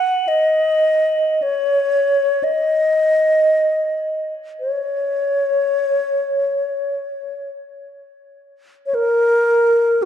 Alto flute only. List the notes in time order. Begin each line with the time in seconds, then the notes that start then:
Already playing: F#5
0.28 D#5
1.42 C#5
2.44 D#5
4.60 C#5
8.86 C#5
8.94 A#4